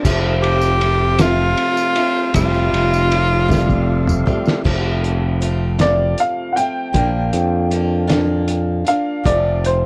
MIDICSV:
0, 0, Header, 1, 7, 480
1, 0, Start_track
1, 0, Key_signature, -1, "major"
1, 0, Tempo, 766284
1, 36, Time_signature, 6, 3, 24, 8
1, 6175, End_track
2, 0, Start_track
2, 0, Title_t, "Upright piano"
2, 0, Program_c, 0, 0
2, 3641, Note_on_c, 0, 74, 91
2, 3868, Note_off_c, 0, 74, 0
2, 3885, Note_on_c, 0, 77, 81
2, 4088, Note_on_c, 0, 78, 60
2, 4110, Note_off_c, 0, 77, 0
2, 4111, Note_on_c, 0, 79, 94
2, 4116, Note_off_c, 0, 78, 0
2, 5532, Note_off_c, 0, 79, 0
2, 5562, Note_on_c, 0, 77, 84
2, 5793, Note_off_c, 0, 77, 0
2, 5800, Note_on_c, 0, 74, 85
2, 6033, Note_off_c, 0, 74, 0
2, 6052, Note_on_c, 0, 72, 76
2, 6175, Note_off_c, 0, 72, 0
2, 6175, End_track
3, 0, Start_track
3, 0, Title_t, "Tenor saxophone"
3, 0, Program_c, 1, 66
3, 265, Note_on_c, 1, 67, 106
3, 760, Note_on_c, 1, 65, 117
3, 769, Note_off_c, 1, 67, 0
3, 1473, Note_off_c, 1, 65, 0
3, 1476, Note_on_c, 1, 65, 107
3, 2646, Note_off_c, 1, 65, 0
3, 6175, End_track
4, 0, Start_track
4, 0, Title_t, "Tonewheel organ"
4, 0, Program_c, 2, 16
4, 33, Note_on_c, 2, 57, 74
4, 34, Note_on_c, 2, 60, 77
4, 34, Note_on_c, 2, 65, 72
4, 1454, Note_off_c, 2, 57, 0
4, 1454, Note_off_c, 2, 60, 0
4, 1455, Note_off_c, 2, 65, 0
4, 1465, Note_on_c, 2, 65, 68
4, 1472, Note_on_c, 2, 55, 70
4, 1472, Note_on_c, 2, 57, 72
4, 2890, Note_off_c, 2, 65, 0
4, 2894, Note_off_c, 2, 55, 0
4, 2894, Note_off_c, 2, 57, 0
4, 6175, End_track
5, 0, Start_track
5, 0, Title_t, "Steel-string acoustic guitar"
5, 0, Program_c, 3, 25
5, 31, Note_on_c, 3, 41, 85
5, 32, Note_on_c, 3, 53, 91
5, 33, Note_on_c, 3, 48, 92
5, 33, Note_on_c, 3, 57, 95
5, 34, Note_on_c, 3, 60, 94
5, 36, Note_on_c, 3, 65, 98
5, 506, Note_off_c, 3, 53, 0
5, 508, Note_on_c, 3, 53, 57
5, 511, Note_off_c, 3, 41, 0
5, 511, Note_off_c, 3, 57, 0
5, 512, Note_off_c, 3, 48, 0
5, 514, Note_on_c, 3, 57, 61
5, 517, Note_off_c, 3, 60, 0
5, 517, Note_off_c, 3, 65, 0
5, 519, Note_on_c, 3, 60, 62
5, 519, Note_on_c, 3, 65, 68
5, 743, Note_off_c, 3, 60, 0
5, 743, Note_off_c, 3, 65, 0
5, 750, Note_off_c, 3, 53, 0
5, 751, Note_off_c, 3, 57, 0
5, 751, Note_on_c, 3, 60, 60
5, 751, Note_on_c, 3, 65, 60
5, 757, Note_on_c, 3, 41, 58
5, 757, Note_on_c, 3, 53, 59
5, 759, Note_on_c, 3, 57, 64
5, 760, Note_on_c, 3, 48, 60
5, 1227, Note_off_c, 3, 65, 0
5, 1228, Note_off_c, 3, 60, 0
5, 1229, Note_on_c, 3, 65, 60
5, 1230, Note_on_c, 3, 60, 51
5, 1232, Note_off_c, 3, 57, 0
5, 1233, Note_off_c, 3, 41, 0
5, 1234, Note_off_c, 3, 48, 0
5, 1234, Note_on_c, 3, 57, 48
5, 1238, Note_off_c, 3, 53, 0
5, 1240, Note_on_c, 3, 53, 46
5, 1469, Note_off_c, 3, 65, 0
5, 1470, Note_off_c, 3, 57, 0
5, 1470, Note_off_c, 3, 60, 0
5, 1475, Note_off_c, 3, 53, 0
5, 1475, Note_on_c, 3, 41, 68
5, 1478, Note_on_c, 3, 55, 79
5, 1478, Note_on_c, 3, 57, 79
5, 1479, Note_on_c, 3, 48, 71
5, 1479, Note_on_c, 3, 60, 89
5, 1487, Note_on_c, 3, 65, 80
5, 1937, Note_off_c, 3, 55, 0
5, 1944, Note_on_c, 3, 55, 58
5, 1945, Note_off_c, 3, 57, 0
5, 1947, Note_off_c, 3, 65, 0
5, 1948, Note_off_c, 3, 60, 0
5, 1951, Note_off_c, 3, 41, 0
5, 1953, Note_off_c, 3, 48, 0
5, 1953, Note_on_c, 3, 57, 58
5, 1955, Note_on_c, 3, 65, 62
5, 1956, Note_on_c, 3, 60, 64
5, 2174, Note_off_c, 3, 57, 0
5, 2174, Note_off_c, 3, 65, 0
5, 2175, Note_off_c, 3, 60, 0
5, 2176, Note_off_c, 3, 55, 0
5, 2181, Note_on_c, 3, 65, 71
5, 2182, Note_on_c, 3, 57, 63
5, 2183, Note_on_c, 3, 60, 71
5, 2184, Note_on_c, 3, 55, 66
5, 2188, Note_on_c, 3, 48, 65
5, 2192, Note_on_c, 3, 41, 58
5, 2658, Note_off_c, 3, 65, 0
5, 2665, Note_off_c, 3, 55, 0
5, 2665, Note_off_c, 3, 57, 0
5, 2665, Note_off_c, 3, 60, 0
5, 2665, Note_on_c, 3, 65, 57
5, 2668, Note_off_c, 3, 48, 0
5, 2669, Note_off_c, 3, 41, 0
5, 2672, Note_on_c, 3, 60, 56
5, 2674, Note_on_c, 3, 57, 52
5, 2677, Note_on_c, 3, 55, 56
5, 2906, Note_off_c, 3, 65, 0
5, 2907, Note_on_c, 3, 41, 81
5, 2910, Note_off_c, 3, 60, 0
5, 2911, Note_off_c, 3, 57, 0
5, 2911, Note_on_c, 3, 48, 81
5, 2912, Note_off_c, 3, 55, 0
5, 2916, Note_on_c, 3, 53, 83
5, 2918, Note_on_c, 3, 60, 83
5, 2919, Note_on_c, 3, 57, 82
5, 2925, Note_on_c, 3, 65, 87
5, 3384, Note_off_c, 3, 53, 0
5, 3387, Note_off_c, 3, 41, 0
5, 3387, Note_off_c, 3, 57, 0
5, 3387, Note_on_c, 3, 53, 58
5, 3390, Note_off_c, 3, 48, 0
5, 3393, Note_off_c, 3, 60, 0
5, 3395, Note_on_c, 3, 57, 61
5, 3398, Note_off_c, 3, 65, 0
5, 3400, Note_on_c, 3, 60, 66
5, 3401, Note_on_c, 3, 65, 70
5, 3616, Note_off_c, 3, 60, 0
5, 3619, Note_off_c, 3, 65, 0
5, 3620, Note_off_c, 3, 57, 0
5, 3624, Note_on_c, 3, 60, 58
5, 3626, Note_on_c, 3, 65, 63
5, 3627, Note_on_c, 3, 57, 54
5, 3628, Note_off_c, 3, 53, 0
5, 3632, Note_on_c, 3, 41, 52
5, 3633, Note_on_c, 3, 48, 54
5, 3634, Note_on_c, 3, 53, 57
5, 4107, Note_off_c, 3, 60, 0
5, 4109, Note_off_c, 3, 57, 0
5, 4111, Note_off_c, 3, 41, 0
5, 4111, Note_off_c, 3, 48, 0
5, 4112, Note_off_c, 3, 65, 0
5, 4115, Note_on_c, 3, 65, 53
5, 4116, Note_on_c, 3, 60, 49
5, 4124, Note_on_c, 3, 57, 44
5, 4126, Note_off_c, 3, 53, 0
5, 4128, Note_on_c, 3, 53, 44
5, 4341, Note_off_c, 3, 53, 0
5, 4341, Note_on_c, 3, 46, 70
5, 4343, Note_off_c, 3, 57, 0
5, 4346, Note_on_c, 3, 58, 79
5, 4347, Note_off_c, 3, 65, 0
5, 4348, Note_off_c, 3, 60, 0
5, 4349, Note_on_c, 3, 53, 69
5, 4351, Note_on_c, 3, 62, 76
5, 4355, Note_on_c, 3, 65, 73
5, 4823, Note_off_c, 3, 53, 0
5, 4825, Note_off_c, 3, 58, 0
5, 4826, Note_on_c, 3, 53, 61
5, 4827, Note_off_c, 3, 46, 0
5, 4829, Note_off_c, 3, 62, 0
5, 4833, Note_on_c, 3, 58, 57
5, 4835, Note_off_c, 3, 65, 0
5, 4837, Note_on_c, 3, 62, 71
5, 4837, Note_on_c, 3, 65, 71
5, 5049, Note_off_c, 3, 65, 0
5, 5053, Note_off_c, 3, 62, 0
5, 5056, Note_on_c, 3, 65, 75
5, 5057, Note_off_c, 3, 53, 0
5, 5059, Note_off_c, 3, 58, 0
5, 5061, Note_on_c, 3, 62, 73
5, 5064, Note_on_c, 3, 53, 66
5, 5067, Note_on_c, 3, 58, 65
5, 5068, Note_on_c, 3, 46, 54
5, 5539, Note_off_c, 3, 65, 0
5, 5542, Note_on_c, 3, 65, 49
5, 5545, Note_off_c, 3, 62, 0
5, 5550, Note_off_c, 3, 58, 0
5, 5552, Note_on_c, 3, 62, 50
5, 5553, Note_off_c, 3, 46, 0
5, 5557, Note_on_c, 3, 58, 46
5, 5785, Note_on_c, 3, 41, 74
5, 5789, Note_on_c, 3, 48, 69
5, 5790, Note_off_c, 3, 65, 0
5, 5791, Note_off_c, 3, 58, 0
5, 5794, Note_off_c, 3, 62, 0
5, 5794, Note_on_c, 3, 57, 72
5, 5795, Note_off_c, 3, 53, 0
5, 5796, Note_on_c, 3, 60, 85
5, 5797, Note_on_c, 3, 53, 76
5, 5799, Note_on_c, 3, 65, 84
5, 6175, Note_off_c, 3, 41, 0
5, 6175, Note_off_c, 3, 48, 0
5, 6175, Note_off_c, 3, 53, 0
5, 6175, Note_off_c, 3, 57, 0
5, 6175, Note_off_c, 3, 60, 0
5, 6175, Note_off_c, 3, 65, 0
5, 6175, End_track
6, 0, Start_track
6, 0, Title_t, "Fingered electric bass"
6, 0, Program_c, 4, 33
6, 29, Note_on_c, 4, 29, 105
6, 963, Note_off_c, 4, 29, 0
6, 1473, Note_on_c, 4, 29, 101
6, 1694, Note_off_c, 4, 29, 0
6, 1713, Note_on_c, 4, 29, 91
6, 2645, Note_off_c, 4, 29, 0
6, 2911, Note_on_c, 4, 29, 91
6, 3845, Note_off_c, 4, 29, 0
6, 4349, Note_on_c, 4, 34, 87
6, 4573, Note_off_c, 4, 34, 0
6, 4592, Note_on_c, 4, 41, 81
6, 5531, Note_off_c, 4, 41, 0
6, 5797, Note_on_c, 4, 29, 96
6, 6175, Note_off_c, 4, 29, 0
6, 6175, End_track
7, 0, Start_track
7, 0, Title_t, "Drums"
7, 31, Note_on_c, 9, 54, 94
7, 32, Note_on_c, 9, 36, 107
7, 32, Note_on_c, 9, 49, 102
7, 94, Note_off_c, 9, 54, 0
7, 95, Note_off_c, 9, 36, 0
7, 95, Note_off_c, 9, 49, 0
7, 273, Note_on_c, 9, 51, 72
7, 336, Note_off_c, 9, 51, 0
7, 385, Note_on_c, 9, 54, 75
7, 448, Note_off_c, 9, 54, 0
7, 508, Note_on_c, 9, 51, 72
7, 571, Note_off_c, 9, 51, 0
7, 742, Note_on_c, 9, 51, 88
7, 744, Note_on_c, 9, 54, 93
7, 747, Note_on_c, 9, 38, 103
7, 805, Note_off_c, 9, 51, 0
7, 807, Note_off_c, 9, 54, 0
7, 810, Note_off_c, 9, 38, 0
7, 986, Note_on_c, 9, 54, 30
7, 987, Note_on_c, 9, 51, 71
7, 1049, Note_off_c, 9, 51, 0
7, 1049, Note_off_c, 9, 54, 0
7, 1111, Note_on_c, 9, 54, 80
7, 1174, Note_off_c, 9, 54, 0
7, 1227, Note_on_c, 9, 51, 75
7, 1230, Note_on_c, 9, 54, 31
7, 1290, Note_off_c, 9, 51, 0
7, 1293, Note_off_c, 9, 54, 0
7, 1468, Note_on_c, 9, 51, 102
7, 1472, Note_on_c, 9, 36, 109
7, 1477, Note_on_c, 9, 54, 100
7, 1531, Note_off_c, 9, 51, 0
7, 1534, Note_off_c, 9, 36, 0
7, 1540, Note_off_c, 9, 54, 0
7, 1595, Note_on_c, 9, 54, 31
7, 1658, Note_off_c, 9, 54, 0
7, 1717, Note_on_c, 9, 54, 28
7, 1718, Note_on_c, 9, 51, 77
7, 1780, Note_off_c, 9, 51, 0
7, 1780, Note_off_c, 9, 54, 0
7, 1840, Note_on_c, 9, 54, 80
7, 1903, Note_off_c, 9, 54, 0
7, 1950, Note_on_c, 9, 54, 31
7, 1953, Note_on_c, 9, 51, 78
7, 2012, Note_off_c, 9, 54, 0
7, 2016, Note_off_c, 9, 51, 0
7, 2195, Note_on_c, 9, 36, 77
7, 2202, Note_on_c, 9, 54, 91
7, 2204, Note_on_c, 9, 38, 61
7, 2258, Note_off_c, 9, 36, 0
7, 2264, Note_off_c, 9, 54, 0
7, 2267, Note_off_c, 9, 38, 0
7, 2316, Note_on_c, 9, 36, 61
7, 2318, Note_on_c, 9, 54, 30
7, 2378, Note_off_c, 9, 36, 0
7, 2381, Note_off_c, 9, 54, 0
7, 2552, Note_on_c, 9, 45, 76
7, 2562, Note_on_c, 9, 54, 77
7, 2615, Note_off_c, 9, 45, 0
7, 2625, Note_off_c, 9, 54, 0
7, 2675, Note_on_c, 9, 43, 98
7, 2679, Note_on_c, 9, 54, 32
7, 2738, Note_off_c, 9, 43, 0
7, 2741, Note_off_c, 9, 54, 0
7, 2790, Note_on_c, 9, 54, 34
7, 2802, Note_on_c, 9, 38, 81
7, 2853, Note_off_c, 9, 54, 0
7, 2865, Note_off_c, 9, 38, 0
7, 2915, Note_on_c, 9, 36, 110
7, 2916, Note_on_c, 9, 49, 105
7, 2977, Note_off_c, 9, 36, 0
7, 2979, Note_off_c, 9, 49, 0
7, 3157, Note_on_c, 9, 42, 60
7, 3220, Note_off_c, 9, 42, 0
7, 3394, Note_on_c, 9, 42, 63
7, 3457, Note_off_c, 9, 42, 0
7, 3628, Note_on_c, 9, 42, 83
7, 3633, Note_on_c, 9, 38, 106
7, 3691, Note_off_c, 9, 42, 0
7, 3696, Note_off_c, 9, 38, 0
7, 3870, Note_on_c, 9, 42, 63
7, 3933, Note_off_c, 9, 42, 0
7, 4116, Note_on_c, 9, 42, 66
7, 4179, Note_off_c, 9, 42, 0
7, 4350, Note_on_c, 9, 42, 83
7, 4353, Note_on_c, 9, 36, 106
7, 4413, Note_off_c, 9, 42, 0
7, 4416, Note_off_c, 9, 36, 0
7, 4592, Note_on_c, 9, 42, 65
7, 4654, Note_off_c, 9, 42, 0
7, 4831, Note_on_c, 9, 42, 65
7, 4894, Note_off_c, 9, 42, 0
7, 5070, Note_on_c, 9, 42, 85
7, 5075, Note_on_c, 9, 38, 102
7, 5132, Note_off_c, 9, 42, 0
7, 5137, Note_off_c, 9, 38, 0
7, 5310, Note_on_c, 9, 42, 70
7, 5373, Note_off_c, 9, 42, 0
7, 5554, Note_on_c, 9, 42, 69
7, 5616, Note_off_c, 9, 42, 0
7, 5798, Note_on_c, 9, 36, 108
7, 5801, Note_on_c, 9, 42, 94
7, 5861, Note_off_c, 9, 36, 0
7, 5864, Note_off_c, 9, 42, 0
7, 6042, Note_on_c, 9, 42, 73
7, 6105, Note_off_c, 9, 42, 0
7, 6175, End_track
0, 0, End_of_file